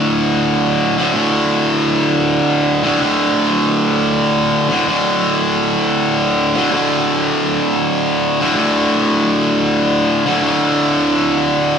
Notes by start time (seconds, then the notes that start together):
Already playing: D2 A2 D3
0.97 D2 A2 D3
1.13 D2 A2 D3
2.83 D2 A2 D3
2.99 D2 A2 D3
4.69 D2 A2 D3
4.85 D2 A2 D3
6.54 D2 A2 D3
6.71 D2 A2 D3
8.41 D2 A2 D3
8.54 D2 A2 D3
10.26 D2 A2 D3
10.41 D2 A2 D3